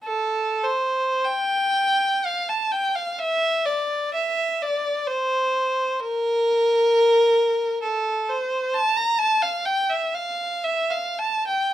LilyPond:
\new Staff \with { instrumentName = "Violin" } { \time 4/4 \key f \major \tempo 4 = 64 a'8 c''8 g''4 f''16 a''16 g''16 f''16 e''8 d''8 | e''8 d''8 c''4 bes'2 | a'8 c''8 a''16 bes''16 a''16 f''16 g''16 e''16 f''8 e''16 f''16 a''16 g''16 | }